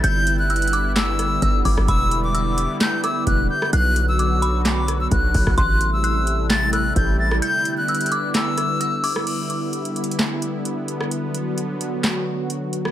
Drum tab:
CC |------------------------------------------------------------------------------------------------|------------------------------------------------------------------------------------------------|------------------------------------------------------------------------------------------------|------------------------------------------------------------------------------------------------|
HH |x-----------x-----------x--x--x--x--x-----------x-----------x-----------x-----------o-----------|x-----------x-----------x-----------x-----------x-----------x-----------x-----------------------|x-----------x-----------x-----------x-----------x-----------x-----------x-----------o-----------|x-----------x-----------x-----------x-----------x-----------x-----------x-----------------------|
CP |------------------------------------------------x-----------------------------------------------|------------------------------------------------x-----------------------------------------------|------------------------------------------------x-----------------------------------------------|------------------------------------------------x-----------------------------------------------|
SD |------------------------------------------------o-----------r-----------------------------r-----|------------------------------------------------o-----------r-----------------------------r-----|------------------------------------------------o-----------r-----------------------------r-----|------------------------------------------------o-----------r-----------------------------r-----|
BD |------------------------------------------------------------------------o-----------o-----o-----|o-----------------------------------------------------------------------o-----------------------|------------------------------------------------------------------------o-----------o-----o-----|o-----------------------------------------------------------------------o-----------------------|

CC |------------------------------------------------------------------------------------------------|x-----------------------------------------------------------------------------------------------|------------------------------------------------------------------------------------------------|
HH |x-----------x-----------x--x--x--x--x-----------x-----------x-----------x-----------o-----------|x-----------x-----------x-----x-----x---x---x---x-----------x-----------x-----------x-----------|x-----------x-----------x-----------x-----------x-----------------------x-----------x-----------|
CP |------------------------------------------------x-----------------------------------------------|------------------------------------------------x-----------------------------------------------|------------------------------------------------x-----------------------------------------------|
SD |------------------------------------------------o-----------r-----------------------------r-----|------------------------------------------------o-----------------------------------------r-----|------------------------------------------------o-----------------------------------------r-----|
BD |------------------------------------------------------------------------------------------------|------------------------------------------------------------------------------------------------|------------------------------------------------------------------------------------------------|